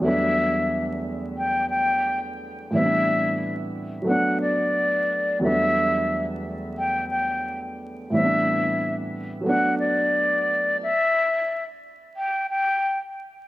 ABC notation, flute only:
X:1
M:4/4
L:1/16
Q:"Swing 16ths" 1/4=89
K:Em
V:1 name="Flute"
e4- e z3 g2 g3 z3 | e4- e z3 f2 d6 | e4- e z3 g2 g3 z3 | e4- e z3 f2 d6 |
e4- e z3 g2 g3 z3 |]